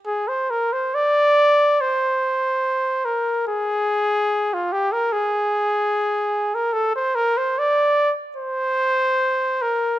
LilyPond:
\new Staff \with { instrumentName = "Trumpet" } { \time 4/4 \key c \minor \tempo 4 = 72 aes'16 c''16 bes'16 c''16 d''4 c''4. bes'8 | aes'4~ aes'16 f'16 g'16 bes'16 aes'4.~ aes'16 bes'16 | a'16 c''16 bes'16 c''16 d''8. r16 c''4. bes'8 | }